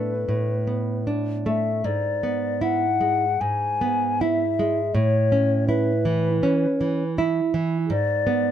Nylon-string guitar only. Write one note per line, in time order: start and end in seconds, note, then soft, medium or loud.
0.00 0.25 A2 soft
0.00 0.53 A3 soft
0.00 0.14 D4 soft
0.29 1.81 A2 soft
0.67 1.31 B3 soft
1.07 1.70 D4 soft
1.46 1.85 A3 soft
1.84 3.36 G#2 medium
2.23 2.85 B3 soft
2.61 3.24 E4 soft
3.01 3.65 G#3 soft
3.41 4.91 G#2 soft
3.81 4.43 B3 soft
4.21 4.80 E4 soft
4.59 4.95 G#3 soft
4.95 6.39 A2 medium
5.32 5.91 C#4 soft
5.69 6.28 E4 soft
6.05 6.66 E3 soft
6.43 7.03 C#4 soft
6.81 7.40 E3 soft
7.18 7.77 E4 soft
7.54 7.91 E3 soft
7.90 8.52 G#2 medium
8.27 8.52 B3 soft